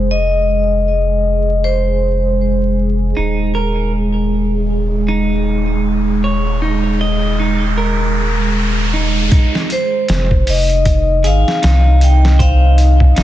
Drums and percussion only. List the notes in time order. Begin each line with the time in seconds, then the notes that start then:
9.32 kick, closed hi-hat
9.55 snare
9.70 closed hi-hat
10.08 snare, closed hi-hat
10.31 kick
10.47 open hi-hat
10.70 closed hi-hat
10.85 kick, closed hi-hat
11.24 closed hi-hat
11.48 snare
11.63 snare, closed hi-hat
12.01 closed hi-hat
12.25 snare
12.40 kick, closed hi-hat
12.78 closed hi-hat
13.00 kick
13.16 snare, closed hi-hat